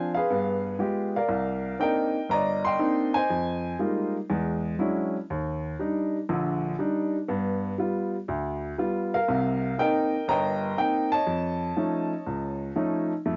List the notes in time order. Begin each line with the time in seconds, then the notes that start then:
Already playing: F3 C4 D4 C5 F5 G#5
0.14 G#4 B4 F5
0.30 G2 B3
0.79 G#3 B3 F4 G4
1.16 A#4 D5 F5
1.28 C2
1.79 A#3 C4 D4 D#4 A#4 D#5 G5
2.29 G1 D5 D#5 A#5
2.65 D#5 G5 C6
2.79 A#3 C4 D4 D#4
3.14 C5 D#5 G#5
3.30 F2
3.79 G3 G#3 A#3 D#4 F4
4.30 E2 G#3
4.79 F#3 G#3 C#4 D4 E4
5.30 D#2
5.79 G3 D4 D#4
6.29 A#1 D3
6.79 G3 D4 D#4
7.28 G2 B3
7.78 G3 B3 F4
8.28 D2
8.78 G3 B3 F4
9.14 A#4 F5
9.28 C2 C3
9.78 A#3 C4 D#4 A#4 D#5 G5
10.28 G1 G2 D#5 G5 A#5
10.78 A#3 C4 D#4 G5
11.12 C#5 D#5 A5
11.27 F2
11.76 F3 A3 C#4 D#4
12.26 C#2
12.76 F3 A3 C#4 D#4
13.26 F2 A3